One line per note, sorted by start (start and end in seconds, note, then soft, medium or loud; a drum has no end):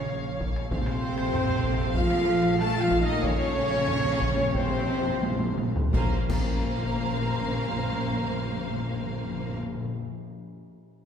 0.00 0.68 A#1 medium
0.00 0.42 C#3 medium
0.00 0.69 A#3 loud
0.00 0.40 C#4 loud
0.00 0.40 C#5 medium
0.00 0.41 C#5 loud
0.00 0.42 C#5 loud
0.00 0.69 C#5 loud
0.00 0.68 F5 loud
0.41 taiko loud
0.56 taiko rim soft
0.71 5.67 A#1 loud
0.71 0.78 A#2 medium
0.71 1.92 C3 loud
0.71 5.66 A3 loud
0.71 1.92 C4 loud
0.71 5.66 A4 loud
0.71 1.91 C5 loud
0.71 1.92 C5 loud
0.71 1.93 C5 loud
0.71 5.66 F5 loud
0.71 taiko loud
0.79 0.86 A#2 medium
0.87 0.93 A#2 medium
0.87 taiko rim medium
0.94 1.00 A#2 soft
1.01 1.07 A#2 medium
1.08 1.16 A#2 soft
1.17 1.24 A#2 soft
1.17 taiko rim soft
1.25 1.31 A#2 medium
1.32 1.39 A#2 soft
1.32 taiko low-mid medium
1.41 1.48 A#2 medium
1.48 1.56 A#2 medium
1.48 taiko low-mid medium
1.58 1.64 A#2 medium
1.64 1.72 A#2 medium
1.64 taiko medium
1.73 1.80 A#2 medium
1.81 1.87 A#2 medium
1.88 1.94 A#2 medium
1.95 2.01 A#2 medium
1.95 2.58 F3 loud
1.95 2.59 F4 loud
1.95 2.59 F5 loud
1.95 2.58 F5 loud
1.95 taiko loud
2.02 2.09 A#2 medium
2.10 2.18 A#2 medium
2.10 taiko rim soft
2.20 2.25 A#2 medium
2.27 2.33 A#2 medium
2.35 2.42 A#2 medium
2.43 2.50 A#2 medium
2.51 2.57 A#2 medium
2.57 2.64 A#2 medium
2.57 2.81 A3 loud
2.57 2.79 A4 loud
2.57 2.80 A5 loud
2.57 2.81 A5 loud
2.65 2.73 A#2 medium
2.74 2.80 A#2 medium
2.74 3.00 F4 loud
2.80 2.88 A#2 medium
2.80 3.02 F3 loud
2.80 3.01 F5 loud
2.80 3.02 F5 loud
2.89 2.96 A#2 medium
2.89 taiko loud
2.98 3.05 A#2 medium
2.98 3.22 D#4 loud
2.98 3.23 D#5 loud
3.02 3.23 D#3 loud
3.02 3.23 D#5 loud
3.02 3.24 D#5 loud
3.06 3.13 A#2 medium
3.14 3.20 A#2 medium
3.21 3.28 A#2 medium
3.21 4.54 C#4 loud
3.21 4.55 C#5 loud
3.21 4.53 C#5 loud
3.21 4.56 C#5 loud
3.21 taiko loud
3.25 4.56 C#3 loud
3.31 3.37 A#2 medium
3.39 3.45 A#2 medium
3.46 3.53 A#2 loud
3.54 3.60 A#2 medium
3.61 3.68 A#2 medium
3.69 3.76 A#2 loud
3.69 taiko rim medium
3.78 3.85 A#2 loud
3.87 3.93 A#2 medium
3.87 taiko low-mid medium
3.94 4.01 A#2 loud
4.02 4.09 A#2 loud
4.02 taiko low-mid medium
4.10 4.17 A#2 loud
4.18 4.25 A#2 loud
4.18 taiko medium
4.26 4.34 A#2 loud
4.35 4.42 A#2 loud
4.43 4.51 A#2 loud
4.52 4.59 A#2 loud
4.52 5.59 C3 loud
4.52 5.57 C4 loud
4.52 5.58 C5 loud
4.52 5.59 C5 loud
4.52 taiko medium
4.61 4.67 A#2 loud
4.68 4.76 A#2 loud
4.78 4.85 A#2 loud
4.86 4.92 A#2 loud
4.93 5.00 A#2 loud
5.02 5.08 A#2 loud
5.09 5.17 A#2 loud
5.18 5.25 A#2 loud
5.23 5.34 A#2 loud
5.23 taiko high loud
5.35 5.43 A#2 loud
5.40 5.51 A#2 loud
5.40 taiko high loud
5.53 5.61 A#2 loud
5.58 taiko high loud
5.63 5.69 A#2 loud
5.70 5.77 A#2 loud
5.76 5.87 A#2 loud
5.76 taiko low loud
5.92 6.15 A#1 medium
5.92 5.99 A#2 loud
5.92 9.51 A#3 loud
5.92 6.15 A#3 medium
5.92 6.14 C#4 loud
5.92 6.15 A#4 medium
5.92 6.15 C5 medium
5.92 6.15 F5 medium
5.92 6.14 A#5 medium
5.92 6.15 A#5 medium
5.92 concert bass drum medium
5.92 snare medium
5.92 taiko loud
6.00 6.06 A#2 loud
6.06 6.12 A#2 loud
6.27 9.55 A#1 loud
6.27 6.34 A#2 loud
6.27 9.55 A#3 medium
6.27 9.55 C#4 medium
6.27 9.55 A#4 medium
6.27 9.55 C5 medium
6.27 9.56 F5 medium
6.27 9.54 A#5 loud
6.27 concert bass drum medium
6.27 taiko loud
6.27 crash medium
6.31 6.40 A#2 medium
6.31 9.56 A#5 medium
6.40 6.46 A#2 loud
6.46 6.53 A#2 medium
6.53 6.59 A#2 loud
6.59 6.66 A#2 medium
6.66 6.72 A#2 loud
6.72 6.78 A#2 medium
6.78 6.84 A#2 loud
6.84 6.90 A#2 medium
6.91 6.97 A#2 loud
6.97 7.03 A#2 loud
7.03 7.10 A#2 loud
7.10 7.16 A#2 medium
7.16 7.21 A#2 loud
7.21 7.28 A#2 medium
7.28 7.34 A#2 loud
7.34 7.40 A#2 medium
7.40 7.46 A#2 medium
7.46 7.52 A#2 medium
7.52 7.59 A#2 loud
7.59 7.65 A#2 medium
7.65 7.72 A#2 medium
7.72 7.78 A#2 loud
7.78 7.85 A#2 loud
7.85 7.91 A#2 loud
7.91 7.97 A#2 medium
7.98 8.04 A#2 medium
8.04 8.10 A#2 loud
8.11 8.17 A#2 medium
8.17 8.23 A#2 medium
8.24 8.30 A#2 medium
8.30 8.36 A#2 loud
8.37 8.43 A#2 medium
8.43 8.49 A#2 loud
8.49 8.55 A#2 medium
8.55 8.61 A#2 loud
8.61 8.67 A#2 medium
8.67 8.74 A#2 medium
8.74 8.80 A#2 loud
8.81 8.86 A#2 medium
8.86 8.93 A#2 medium
8.93 8.99 A#2 loud
8.99 9.05 A#2 medium
9.05 9.11 A#2 medium
9.11 9.17 A#2 medium
9.17 9.23 A#2 medium
9.24 9.30 A#2 loud
9.30 9.36 A#2 loud
9.36 9.42 A#2 medium
9.42 9.48 A#2 loud
9.48 9.54 A#2 medium
9.54 9.61 A#2 loud
9.61 9.67 A#2 medium
9.67 9.73 A#2 loud
9.73 9.79 A#2 medium
9.80 9.86 A#2 medium